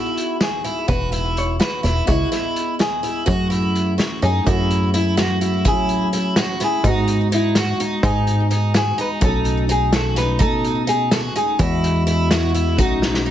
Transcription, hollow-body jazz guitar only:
0.00 0.42 F#4 medium
0.42 0.91 G#4 medium
0.89 1.38 B4 loud
1.38 1.60 C#5 medium
1.61 1.94 B4 medium
2.10 2.82 E4 medium
2.81 3.29 G#4 medium
3.27 4.18 F#4 medium
4.24 4.48 G#4 medium
4.48 4.95 F#4 medium
4.95 5.17 E4 medium
5.19 5.67 F#4 medium
5.68 6.40 G#4 medium
6.39 6.62 F#4 medium
6.64 6.87 G#4 medium
6.87 7.34 F#4 loud
7.34 7.57 E4 medium
7.57 8.05 F#4 medium
8.05 8.76 G#4 loud
8.77 9.00 G#4 medium
9.01 9.07 B4 medium
9.24 9.68 A4 loud
9.71 9.94 G#4 medium
9.95 10.17 A4 medium
10.18 10.41 B4 loud
10.41 10.85 A4 loud
10.89 11.12 G#4 medium
11.13 11.19 A4 medium
11.37 11.61 G#4 medium
11.61 12.32 F#4 medium
12.32 12.79 E4 medium
12.80 13.31 F#4 medium

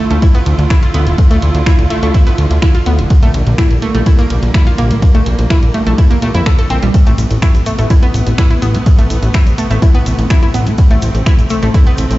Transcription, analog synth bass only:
0.11 0.18 D2 medium
0.46 0.54 D2 loud
0.59 0.66 D2 medium
0.94 1.08 D2 loud
1.07 1.14 D1 medium
1.31 1.38 D2 medium
1.42 1.50 D2 loud
1.55 1.62 D2 medium
1.79 1.86 D2 medium
2.03 2.10 D2 medium
2.38 2.46 D2 medium
2.51 2.58 D2 medium
2.86 3.00 D2 medium
2.99 3.06 D1 medium
3.23 3.30 A#1 medium
3.34 3.42 A#1 medium
3.47 3.54 A#1 medium
3.71 3.78 A#1 medium
3.95 4.02 A#1 medium
4.30 4.38 A#1 medium
4.43 4.50 A#1 medium
4.78 4.92 A#1 medium
4.91 4.98 A#2 medium
5.15 5.22 A#1 medium
5.26 5.34 A#1 medium
5.39 5.46 A#1 medium
5.63 5.70 A#1 medium
5.87 5.94 A#1 medium
6.22 6.30 A#2 medium
6.35 6.42 F2 medium
6.70 6.78 A#1 medium
6.83 6.90 A#1 medium
7.07 7.14 A1 medium
7.18 7.26 A1 medium
7.31 7.38 A1 medium
7.54 7.62 A1 medium
7.79 7.86 A1 medium
8.14 8.22 A1 medium
8.27 8.34 A1 medium
8.62 8.76 A1 medium
8.75 8.82 A2 medium
8.99 9.06 A1 medium
9.10 9.18 A1 medium
9.23 9.30 A1 medium
9.47 9.54 A1 medium
9.71 9.78 A1 medium
10.06 10.14 A1 medium
10.19 10.26 A1 medium
10.54 10.68 A1 loud
10.67 10.74 A2 medium
10.91 10.98 A1 medium
11.02 11.10 A1 medium
11.15 11.22 A1 medium
11.39 11.46 A1 medium
11.63 11.70 A1 medium
11.98 12.06 A1 medium
12.11 12.18 A1 medium

